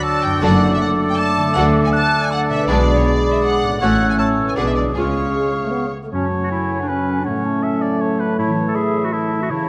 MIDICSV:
0, 0, Header, 1, 11, 480
1, 0, Start_track
1, 0, Key_signature, 3, "minor"
1, 0, Tempo, 376884
1, 537, Time_signature, 3, 2, 24, 8
1, 5331, Tempo, 386100
1, 8211, Tempo, 375000
1, 12290, End_track
2, 0, Start_track
2, 0, Title_t, "Flute"
2, 0, Program_c, 0, 73
2, 41, Note_on_c, 0, 88, 62
2, 522, Note_off_c, 0, 88, 0
2, 535, Note_on_c, 0, 86, 79
2, 2454, Note_on_c, 0, 90, 67
2, 2474, Note_off_c, 0, 86, 0
2, 2938, Note_on_c, 0, 81, 59
2, 2957, Note_off_c, 0, 90, 0
2, 3408, Note_off_c, 0, 81, 0
2, 3415, Note_on_c, 0, 83, 71
2, 4385, Note_on_c, 0, 86, 59
2, 4404, Note_off_c, 0, 83, 0
2, 4858, Note_off_c, 0, 86, 0
2, 4864, Note_on_c, 0, 90, 62
2, 5338, Note_on_c, 0, 88, 53
2, 5356, Note_off_c, 0, 90, 0
2, 5810, Note_off_c, 0, 88, 0
2, 5823, Note_on_c, 0, 86, 41
2, 6288, Note_off_c, 0, 86, 0
2, 6316, Note_on_c, 0, 85, 46
2, 7490, Note_off_c, 0, 85, 0
2, 7753, Note_on_c, 0, 81, 42
2, 8203, Note_on_c, 0, 80, 41
2, 8222, Note_off_c, 0, 81, 0
2, 9161, Note_on_c, 0, 78, 47
2, 9180, Note_off_c, 0, 80, 0
2, 9422, Note_on_c, 0, 81, 44
2, 9441, Note_off_c, 0, 78, 0
2, 10605, Note_off_c, 0, 81, 0
2, 10612, Note_on_c, 0, 81, 44
2, 11093, Note_on_c, 0, 83, 46
2, 11112, Note_off_c, 0, 81, 0
2, 11575, Note_on_c, 0, 81, 42
2, 11594, Note_off_c, 0, 83, 0
2, 12055, Note_off_c, 0, 81, 0
2, 12062, Note_on_c, 0, 81, 48
2, 12290, Note_off_c, 0, 81, 0
2, 12290, End_track
3, 0, Start_track
3, 0, Title_t, "Violin section"
3, 0, Program_c, 1, 48
3, 58, Note_on_c, 1, 81, 78
3, 293, Note_off_c, 1, 81, 0
3, 309, Note_on_c, 1, 79, 75
3, 544, Note_off_c, 1, 79, 0
3, 551, Note_on_c, 1, 78, 77
3, 906, Note_off_c, 1, 78, 0
3, 933, Note_on_c, 1, 76, 71
3, 1027, Note_on_c, 1, 78, 75
3, 1033, Note_off_c, 1, 76, 0
3, 1129, Note_off_c, 1, 78, 0
3, 1397, Note_on_c, 1, 79, 74
3, 1501, Note_on_c, 1, 81, 86
3, 1505, Note_off_c, 1, 79, 0
3, 1972, Note_on_c, 1, 78, 82
3, 1978, Note_off_c, 1, 81, 0
3, 2074, Note_off_c, 1, 78, 0
3, 2360, Note_on_c, 1, 80, 69
3, 2403, Note_off_c, 1, 80, 0
3, 2463, Note_on_c, 1, 81, 81
3, 2812, Note_off_c, 1, 81, 0
3, 2841, Note_on_c, 1, 80, 78
3, 2947, Note_off_c, 1, 80, 0
3, 2959, Note_on_c, 1, 78, 83
3, 3050, Note_off_c, 1, 78, 0
3, 3192, Note_on_c, 1, 76, 72
3, 3418, Note_off_c, 1, 76, 0
3, 3425, Note_on_c, 1, 74, 75
3, 3772, Note_off_c, 1, 74, 0
3, 3802, Note_on_c, 1, 73, 62
3, 3907, Note_off_c, 1, 73, 0
3, 3909, Note_on_c, 1, 74, 74
3, 4260, Note_off_c, 1, 74, 0
3, 4266, Note_on_c, 1, 76, 69
3, 4380, Note_off_c, 1, 76, 0
3, 4383, Note_on_c, 1, 78, 76
3, 4843, Note_off_c, 1, 78, 0
3, 4858, Note_on_c, 1, 78, 67
3, 5207, Note_off_c, 1, 78, 0
3, 5222, Note_on_c, 1, 80, 59
3, 5268, Note_off_c, 1, 80, 0
3, 5335, Note_on_c, 1, 81, 63
3, 5435, Note_off_c, 1, 81, 0
3, 5704, Note_on_c, 1, 80, 56
3, 5749, Note_off_c, 1, 80, 0
3, 5798, Note_on_c, 1, 78, 59
3, 5920, Note_off_c, 1, 78, 0
3, 5931, Note_on_c, 1, 76, 46
3, 5979, Note_off_c, 1, 76, 0
3, 6033, Note_on_c, 1, 74, 49
3, 6132, Note_off_c, 1, 74, 0
3, 6278, Note_on_c, 1, 73, 52
3, 7471, Note_off_c, 1, 73, 0
3, 12290, End_track
4, 0, Start_track
4, 0, Title_t, "Oboe"
4, 0, Program_c, 2, 68
4, 0, Note_on_c, 2, 74, 60
4, 1927, Note_off_c, 2, 74, 0
4, 1994, Note_on_c, 2, 74, 60
4, 4810, Note_off_c, 2, 74, 0
4, 4852, Note_on_c, 2, 73, 49
4, 5299, Note_off_c, 2, 73, 0
4, 5345, Note_on_c, 2, 73, 41
4, 5806, Note_on_c, 2, 74, 40
4, 5825, Note_off_c, 2, 73, 0
4, 6047, Note_off_c, 2, 74, 0
4, 6058, Note_on_c, 2, 74, 38
4, 6165, Note_off_c, 2, 74, 0
4, 6298, Note_on_c, 2, 77, 38
4, 7481, Note_off_c, 2, 77, 0
4, 7739, Note_on_c, 2, 73, 41
4, 8699, Note_on_c, 2, 71, 39
4, 8718, Note_off_c, 2, 73, 0
4, 9162, Note_off_c, 2, 71, 0
4, 9170, Note_on_c, 2, 73, 39
4, 9657, Note_on_c, 2, 76, 45
4, 9676, Note_off_c, 2, 73, 0
4, 9896, Note_on_c, 2, 74, 46
4, 9915, Note_off_c, 2, 76, 0
4, 10142, Note_on_c, 2, 73, 45
4, 10161, Note_off_c, 2, 74, 0
4, 10385, Note_on_c, 2, 71, 44
4, 10404, Note_off_c, 2, 73, 0
4, 10613, Note_off_c, 2, 71, 0
4, 10621, Note_on_c, 2, 73, 45
4, 11094, Note_on_c, 2, 76, 43
4, 11113, Note_off_c, 2, 73, 0
4, 11562, Note_off_c, 2, 76, 0
4, 11570, Note_on_c, 2, 76, 45
4, 12052, Note_on_c, 2, 73, 43
4, 12071, Note_off_c, 2, 76, 0
4, 12290, Note_off_c, 2, 73, 0
4, 12290, End_track
5, 0, Start_track
5, 0, Title_t, "Violin section"
5, 0, Program_c, 3, 48
5, 536, Note_on_c, 3, 66, 60
5, 536, Note_on_c, 3, 69, 64
5, 761, Note_off_c, 3, 66, 0
5, 761, Note_off_c, 3, 69, 0
5, 1978, Note_on_c, 3, 69, 61
5, 1979, Note_on_c, 3, 66, 62
5, 2199, Note_off_c, 3, 69, 0
5, 2200, Note_off_c, 3, 66, 0
5, 3409, Note_on_c, 3, 68, 61
5, 3412, Note_on_c, 3, 71, 57
5, 3634, Note_off_c, 3, 68, 0
5, 3636, Note_off_c, 3, 71, 0
5, 4848, Note_on_c, 3, 73, 53
5, 4852, Note_on_c, 3, 66, 49
5, 5072, Note_off_c, 3, 73, 0
5, 5074, Note_off_c, 3, 66, 0
5, 5798, Note_on_c, 3, 68, 45
5, 5800, Note_on_c, 3, 71, 45
5, 6026, Note_off_c, 3, 68, 0
5, 6027, Note_off_c, 3, 71, 0
5, 6278, Note_on_c, 3, 68, 39
5, 6282, Note_off_c, 3, 68, 0
5, 6282, Note_on_c, 3, 68, 39
5, 6511, Note_off_c, 3, 68, 0
5, 12290, End_track
6, 0, Start_track
6, 0, Title_t, "Clarinet"
6, 0, Program_c, 4, 71
6, 0, Note_on_c, 4, 66, 53
6, 552, Note_on_c, 4, 69, 62
6, 572, Note_off_c, 4, 66, 0
6, 3421, Note_off_c, 4, 69, 0
6, 3431, Note_on_c, 4, 68, 58
6, 4645, Note_off_c, 4, 68, 0
6, 4861, Note_on_c, 4, 69, 52
6, 5303, Note_off_c, 4, 69, 0
6, 5331, Note_on_c, 4, 69, 42
6, 5812, Note_on_c, 4, 68, 40
6, 5830, Note_off_c, 4, 69, 0
6, 6289, Note_off_c, 4, 68, 0
6, 6297, Note_on_c, 4, 68, 40
6, 7480, Note_off_c, 4, 68, 0
6, 7746, Note_on_c, 4, 61, 57
6, 7904, Note_off_c, 4, 61, 0
6, 8125, Note_on_c, 4, 66, 48
6, 8219, Note_off_c, 4, 66, 0
6, 8227, Note_on_c, 4, 64, 58
6, 8574, Note_off_c, 4, 64, 0
6, 8601, Note_on_c, 4, 62, 52
6, 8718, Note_on_c, 4, 61, 56
6, 8737, Note_off_c, 4, 62, 0
6, 9097, Note_on_c, 4, 62, 48
6, 9116, Note_off_c, 4, 61, 0
6, 9203, Note_on_c, 4, 61, 59
6, 9222, Note_off_c, 4, 62, 0
6, 10394, Note_off_c, 4, 61, 0
6, 10623, Note_on_c, 4, 64, 61
6, 10784, Note_off_c, 4, 64, 0
6, 10993, Note_on_c, 4, 69, 50
6, 11095, Note_on_c, 4, 68, 65
6, 11115, Note_off_c, 4, 69, 0
6, 11463, Note_on_c, 4, 66, 56
6, 11483, Note_off_c, 4, 68, 0
6, 11572, Note_on_c, 4, 64, 62
6, 11591, Note_off_c, 4, 66, 0
6, 11934, Note_off_c, 4, 64, 0
6, 11950, Note_on_c, 4, 66, 54
6, 12000, Note_off_c, 4, 66, 0
6, 12056, Note_on_c, 4, 64, 70
6, 12290, Note_off_c, 4, 64, 0
6, 12290, End_track
7, 0, Start_track
7, 0, Title_t, "Harp"
7, 0, Program_c, 5, 46
7, 0, Note_on_c, 5, 50, 52
7, 0, Note_on_c, 5, 62, 41
7, 0, Note_on_c, 5, 66, 42
7, 0, Note_on_c, 5, 69, 44
7, 0, Note_on_c, 5, 74, 42
7, 307, Note_on_c, 5, 42, 55
7, 350, Note_off_c, 5, 62, 0
7, 365, Note_on_c, 5, 62, 46
7, 407, Note_off_c, 5, 66, 0
7, 423, Note_on_c, 5, 66, 45
7, 441, Note_off_c, 5, 50, 0
7, 464, Note_off_c, 5, 69, 0
7, 480, Note_on_c, 5, 69, 45
7, 552, Note_off_c, 5, 74, 0
7, 1746, Note_on_c, 5, 50, 59
7, 1789, Note_off_c, 5, 62, 0
7, 1804, Note_on_c, 5, 62, 48
7, 1846, Note_off_c, 5, 66, 0
7, 1861, Note_on_c, 5, 66, 49
7, 1880, Note_off_c, 5, 42, 0
7, 1903, Note_off_c, 5, 69, 0
7, 1918, Note_on_c, 5, 69, 50
7, 3182, Note_on_c, 5, 47, 54
7, 3225, Note_off_c, 5, 62, 0
7, 3240, Note_on_c, 5, 62, 48
7, 3297, Note_on_c, 5, 68, 45
7, 3318, Note_off_c, 5, 50, 0
7, 3375, Note_off_c, 5, 66, 0
7, 3404, Note_off_c, 5, 69, 0
7, 4620, Note_on_c, 5, 45, 51
7, 4676, Note_on_c, 5, 61, 41
7, 4735, Note_on_c, 5, 66, 42
7, 4755, Note_off_c, 5, 47, 0
7, 4784, Note_off_c, 5, 62, 0
7, 4793, Note_on_c, 5, 69, 42
7, 4813, Note_off_c, 5, 68, 0
7, 5581, Note_on_c, 5, 47, 36
7, 5637, Note_on_c, 5, 56, 33
7, 5692, Note_on_c, 5, 68, 34
7, 5713, Note_off_c, 5, 45, 0
7, 5741, Note_off_c, 5, 61, 0
7, 5769, Note_off_c, 5, 66, 0
7, 5797, Note_off_c, 5, 69, 0
7, 6068, Note_on_c, 5, 49, 35
7, 6111, Note_off_c, 5, 56, 0
7, 6126, Note_on_c, 5, 56, 31
7, 6178, Note_on_c, 5, 65, 30
7, 6196, Note_off_c, 5, 47, 0
7, 6222, Note_off_c, 5, 68, 0
7, 6237, Note_on_c, 5, 68, 31
7, 7649, Note_off_c, 5, 49, 0
7, 7678, Note_off_c, 5, 56, 0
7, 7704, Note_off_c, 5, 65, 0
7, 7734, Note_off_c, 5, 68, 0
7, 7734, Note_on_c, 5, 42, 48
7, 7857, Note_on_c, 5, 49, 30
7, 7976, Note_on_c, 5, 57, 33
7, 8091, Note_on_c, 5, 61, 34
7, 8213, Note_on_c, 5, 66, 36
7, 8329, Note_on_c, 5, 69, 38
7, 8449, Note_on_c, 5, 73, 38
7, 8573, Note_on_c, 5, 78, 38
7, 8681, Note_off_c, 5, 73, 0
7, 8696, Note_on_c, 5, 73, 39
7, 8802, Note_off_c, 5, 69, 0
7, 8817, Note_on_c, 5, 69, 38
7, 8915, Note_off_c, 5, 66, 0
7, 8931, Note_on_c, 5, 66, 37
7, 9037, Note_off_c, 5, 61, 0
7, 9052, Note_on_c, 5, 61, 35
7, 9175, Note_on_c, 5, 45, 44
7, 9193, Note_off_c, 5, 42, 0
7, 9195, Note_off_c, 5, 49, 0
7, 9301, Note_on_c, 5, 54, 33
7, 9404, Note_off_c, 5, 57, 0
7, 9419, Note_on_c, 5, 57, 32
7, 9528, Note_off_c, 5, 61, 0
7, 9544, Note_on_c, 5, 61, 34
7, 9646, Note_off_c, 5, 66, 0
7, 9662, Note_on_c, 5, 66, 37
7, 9769, Note_off_c, 5, 69, 0
7, 9784, Note_on_c, 5, 69, 40
7, 9880, Note_off_c, 5, 73, 0
7, 9895, Note_on_c, 5, 73, 37
7, 10001, Note_off_c, 5, 78, 0
7, 10016, Note_on_c, 5, 78, 41
7, 10120, Note_off_c, 5, 73, 0
7, 10136, Note_on_c, 5, 73, 41
7, 10242, Note_off_c, 5, 69, 0
7, 10258, Note_on_c, 5, 69, 38
7, 10355, Note_off_c, 5, 66, 0
7, 10370, Note_on_c, 5, 66, 36
7, 10480, Note_off_c, 5, 61, 0
7, 10496, Note_on_c, 5, 61, 36
7, 10595, Note_off_c, 5, 45, 0
7, 10610, Note_on_c, 5, 45, 49
7, 10635, Note_off_c, 5, 66, 0
7, 10639, Note_off_c, 5, 78, 0
7, 10642, Note_off_c, 5, 54, 0
7, 10733, Note_on_c, 5, 52, 37
7, 10830, Note_off_c, 5, 57, 0
7, 10846, Note_on_c, 5, 57, 37
7, 10956, Note_off_c, 5, 61, 0
7, 10971, Note_on_c, 5, 61, 37
7, 11085, Note_on_c, 5, 64, 39
7, 11187, Note_off_c, 5, 69, 0
7, 11203, Note_on_c, 5, 69, 38
7, 11311, Note_off_c, 5, 73, 0
7, 11327, Note_on_c, 5, 73, 39
7, 11450, Note_on_c, 5, 76, 44
7, 11554, Note_off_c, 5, 73, 0
7, 11569, Note_on_c, 5, 73, 42
7, 11672, Note_off_c, 5, 69, 0
7, 11687, Note_on_c, 5, 69, 39
7, 11793, Note_off_c, 5, 64, 0
7, 11808, Note_on_c, 5, 64, 38
7, 11913, Note_off_c, 5, 61, 0
7, 11928, Note_on_c, 5, 61, 41
7, 12038, Note_on_c, 5, 49, 50
7, 12070, Note_off_c, 5, 45, 0
7, 12071, Note_off_c, 5, 52, 0
7, 12144, Note_off_c, 5, 57, 0
7, 12159, Note_on_c, 5, 57, 36
7, 12267, Note_off_c, 5, 61, 0
7, 12290, Note_off_c, 5, 49, 0
7, 12290, Note_off_c, 5, 57, 0
7, 12290, Note_off_c, 5, 64, 0
7, 12290, Note_off_c, 5, 69, 0
7, 12290, Note_off_c, 5, 73, 0
7, 12290, Note_off_c, 5, 76, 0
7, 12290, End_track
8, 0, Start_track
8, 0, Title_t, "Viola section"
8, 0, Program_c, 6, 48
8, 542, Note_on_c, 6, 62, 61
8, 544, Note_on_c, 6, 57, 62
8, 765, Note_off_c, 6, 57, 0
8, 765, Note_off_c, 6, 62, 0
8, 1988, Note_on_c, 6, 57, 60
8, 1993, Note_on_c, 6, 62, 61
8, 2205, Note_off_c, 6, 57, 0
8, 2207, Note_off_c, 6, 62, 0
8, 3430, Note_on_c, 6, 62, 59
8, 3431, Note_on_c, 6, 56, 60
8, 3645, Note_off_c, 6, 56, 0
8, 3645, Note_off_c, 6, 62, 0
8, 4864, Note_on_c, 6, 57, 52
8, 4864, Note_on_c, 6, 61, 53
8, 5081, Note_off_c, 6, 57, 0
8, 5081, Note_off_c, 6, 61, 0
8, 5812, Note_on_c, 6, 56, 35
8, 5812, Note_on_c, 6, 62, 37
8, 6033, Note_off_c, 6, 56, 0
8, 6033, Note_off_c, 6, 62, 0
8, 6294, Note_on_c, 6, 65, 39
8, 6297, Note_on_c, 6, 56, 42
8, 6518, Note_off_c, 6, 65, 0
8, 6519, Note_off_c, 6, 56, 0
8, 12290, End_track
9, 0, Start_track
9, 0, Title_t, "French horn section"
9, 0, Program_c, 7, 60
9, 0, Note_on_c, 7, 54, 58
9, 0, Note_on_c, 7, 62, 63
9, 480, Note_off_c, 7, 54, 0
9, 539, Note_on_c, 7, 57, 71
9, 1921, Note_off_c, 7, 62, 0
9, 1983, Note_on_c, 7, 62, 70
9, 3363, Note_off_c, 7, 57, 0
9, 3433, Note_on_c, 7, 56, 65
9, 4805, Note_off_c, 7, 62, 0
9, 4811, Note_off_c, 7, 56, 0
9, 4859, Note_on_c, 7, 57, 60
9, 4865, Note_on_c, 7, 61, 56
9, 5761, Note_off_c, 7, 57, 0
9, 5764, Note_off_c, 7, 61, 0
9, 5803, Note_on_c, 7, 62, 46
9, 5808, Note_on_c, 7, 56, 52
9, 6254, Note_off_c, 7, 62, 0
9, 6284, Note_on_c, 7, 65, 40
9, 6677, Note_off_c, 7, 56, 0
9, 6693, Note_off_c, 7, 65, 0
9, 6768, Note_on_c, 7, 56, 38
9, 6933, Note_off_c, 7, 56, 0
9, 7132, Note_on_c, 7, 57, 37
9, 7188, Note_off_c, 7, 57, 0
9, 7227, Note_on_c, 7, 59, 43
9, 7398, Note_off_c, 7, 59, 0
9, 7611, Note_on_c, 7, 57, 29
9, 7726, Note_on_c, 7, 54, 45
9, 7734, Note_off_c, 7, 57, 0
9, 9118, Note_off_c, 7, 54, 0
9, 9172, Note_on_c, 7, 57, 54
9, 12002, Note_off_c, 7, 57, 0
9, 12057, Note_on_c, 7, 49, 53
9, 12290, Note_off_c, 7, 49, 0
9, 12290, End_track
10, 0, Start_track
10, 0, Title_t, "Cello section"
10, 0, Program_c, 8, 48
10, 538, Note_on_c, 8, 42, 60
10, 939, Note_off_c, 8, 42, 0
10, 1979, Note_on_c, 8, 50, 60
10, 2376, Note_off_c, 8, 50, 0
10, 3412, Note_on_c, 8, 47, 65
10, 3812, Note_off_c, 8, 47, 0
10, 4855, Note_on_c, 8, 45, 56
10, 5253, Note_off_c, 8, 45, 0
10, 5812, Note_on_c, 8, 47, 50
10, 6211, Note_off_c, 8, 47, 0
10, 6294, Note_on_c, 8, 49, 40
10, 6696, Note_off_c, 8, 49, 0
10, 12290, End_track
11, 0, Start_track
11, 0, Title_t, "Double bass section"
11, 0, Program_c, 10, 48
11, 538, Note_on_c, 10, 30, 67
11, 939, Note_off_c, 10, 30, 0
11, 1972, Note_on_c, 10, 38, 64
11, 2373, Note_off_c, 10, 38, 0
11, 3411, Note_on_c, 10, 35, 63
11, 3812, Note_off_c, 10, 35, 0
11, 4857, Note_on_c, 10, 33, 59
11, 5254, Note_off_c, 10, 33, 0
11, 5804, Note_on_c, 10, 35, 47
11, 6207, Note_off_c, 10, 35, 0
11, 6290, Note_on_c, 10, 37, 47
11, 6694, Note_off_c, 10, 37, 0
11, 12290, End_track
0, 0, End_of_file